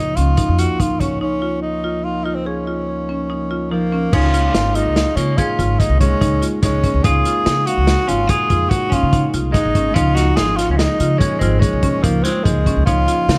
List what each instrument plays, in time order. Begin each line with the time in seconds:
Already playing: tonewheel organ C#2 F3 A#3 D#4, tenor saxophone D#4, marimba F4
0.16 upright bass C#2, marimba C#4, tenor saxophone F4, closed hi-hat
0.37 marimba D#4, kick, closed hi-hat
0.49 upright bass F2
0.58 marimba F4, tenor saxophone F#4, closed hi-hat
0.80 marimba D#4, tenor saxophone F4, kick, closed hi-hat
0.90 upright bass G#1
1.00 marimba C#4, tenor saxophone C#4, kick, closed hi-hat
1.21 tenor saxophone C#4, marimba D#4
1.42 marimba F4
1.62 tenor saxophone D#4
1.84 marimba F4
2.04 tenor saxophone F4
2.24 tenor saxophone D#4, marimba F4
2.35 tenor saxophone C4
2.46 tenor saxophone C#4, marimba G#4
2.67 marimba F4
3.09 marimba C#4
3.30 marimba D#4
3.51 marimba F4
3.71 clean electric guitar F3, tenor saxophone A#3, marimba D#4
3.92 marimba C#4
4.11 upright bass C#2, tonewheel organ G#3 A#3 D#4, clean electric guitar C#4, marimba D#4, tenor saxophone F4, kick, crash
4.34 marimba F4, closed hi-hat
4.54 upright bass G#1, snare, closed hi-hat
4.75 clean electric guitar G#3, tenor saxophone D#4, marimba F4, closed hi-hat
4.86 upright bass C#2
4.96 snare, closed hi-hat
5.16 upright bass C#3, clean electric guitar A#3, tenor saxophone C#4, marimba F4, closed hi-hat
5.38 clean electric guitar C#4, tenor saxophone F4, marimba G#4, kick, closed hi-hat
5.59 upright bass G#1, marimba F4, kick, closed hi-hat
5.79 clean electric guitar G#3, tenor saxophone D#4, kick, closed hi-hat
5.89 upright bass C2
5.99 clean electric guitar G#3, tenor saxophone C#4, marimba C#4, kick, closed hi-hat
6.21 upright bass C#2, marimba D#4, kick, closed hi-hat
6.42 marimba F4, closed hi-hat
6.62 upright bass C#2, clean electric guitar G#3, tenor saxophone C#4, marimba D#4, kick, snare, closed hi-hat
6.84 marimba C#4, kick, closed hi-hat
6.94 upright bass C#2
7.04 upright bass C#2, marimba D#4, clean electric guitar F4, tenor saxophone G#4, kick, closed hi-hat
7.25 marimba F4, closed hi-hat
7.46 upright bass C#3, snare, closed hi-hat
7.67 clean electric guitar C#4, tenor saxophone F#4, marimba F5, closed hi-hat
7.77 upright bass C#2
7.87 snare, closed hi-hat
8.08 upright bass G#1, clean electric guitar C#4, tenor saxophone F4, marimba F4, closed hi-hat
8.27 clean electric guitar F4, marimba G#4, tenor saxophone G#4, kick, closed hi-hat
8.50 upright bass F2, marimba F4, kick, closed hi-hat
8.69 clean electric guitar C#4, tenor saxophone F#4, kick, closed hi-hat
8.90 clean electric guitar C#4, marimba C#4, tenor saxophone F4, kick, closed hi-hat
9.03 upright bass C#3
9.13 marimba D#4, kick, closed hi-hat
9.34 upright bass C2, marimba F4, closed hi-hat
9.52 clean electric guitar G#3, tenor saxophone D#4, marimba D#4, kick, snare, closed hi-hat
9.65 upright bass G#1
9.75 marimba C#4, kick, closed hi-hat
9.94 upright bass C#2, tonewheel organ F3 A#3 D#4, clean electric guitar C#4, marimba D#4, tenor saxophone F4, kick, closed hi-hat
10.15 clean electric guitar D#4, marimba F4, tenor saxophone F#4, snare, closed hi-hat
10.36 upright bass G#1, clean electric guitar F4, tenor saxophone G#4, snare, closed hi-hat
10.56 clean electric guitar C#4, tenor saxophone F4, marimba F4, snare, closed hi-hat
10.69 upright bass C#2, clean electric guitar C#4, tenor saxophone F4
10.76 clean electric guitar G#3, tenor saxophone D#4, snare, closed hi-hat
11.00 upright bass C#3, marimba F4, closed hi-hat
11.18 clean electric guitar G#3, tenor saxophone C#4, marimba G#4, kick, closed hi-hat
11.39 upright bass G#1, clean electric guitar G#3, tenor saxophone C4, marimba F4, kick, closed hi-hat
11.59 clean electric guitar G#3, tenor saxophone C#4, kick, closed hi-hat
11.73 upright bass C2
11.83 marimba C#4, kick, closed hi-hat
12.03 upright bass C#2, clean electric guitar F3, tenor saxophone A#3, marimba D#4, kick, closed hi-hat
12.23 clean electric guitar G#3, tenor saxophone C4, marimba F4, snare, closed hi-hat
12.44 upright bass C#2, clean electric guitar F3, tenor saxophone G#3, marimba D#4, kick, closed hi-hat
12.66 marimba C#4, kick, closed hi-hat
12.76 upright bass C#2
12.86 upright bass C#2, clean electric guitar C#4, marimba D#4, tenor saxophone F4, kick, closed hi-hat
13.08 marimba F4, closed hi-hat
13.29 upright bass C#3, snare, closed hi-hat